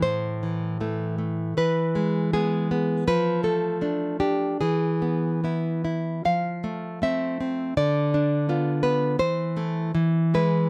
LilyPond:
\new Staff \with { instrumentName = "Nylon-string guitar" } { \time 2/4 \key a \minor \tempo 4 = 79 << { c''2 | b'4 gis'8 r8 | b'8 a'4 g'8 | gis'4 r4 |
f''4 e''4 | d''4. b'8 | c''4. b'8 | } \\ { a,8 e8 <e a>8 a8 | e8 gis8 <gis b>8 b8 | f8 a8 <a d'>8 d'8 | e8 b8 <b e'>8 e'8 |
f8 a8 <a c'>8 c'8 | d8 d'8 <b f'>8 b8 | e8 <a e'>8 e8 <gis e'>8 | } >> }